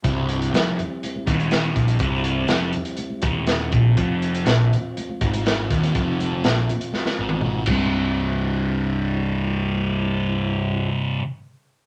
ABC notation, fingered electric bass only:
X:1
M:4/4
L:1/8
Q:1/4=121
K:Cmix
V:1 name="Fingered electric bass" clef=bass
C,,,2 F,,, z2 _E,,,2 B,,, | C,,,2 F,,, z2 _E,,,2 B,,, | F,,,2 B,,, z2 _A,,,2 _E,,, | F,,,2 B,,, z2 _A,,, A,,, C,,,- |
C,,,8- | C,,,8 |]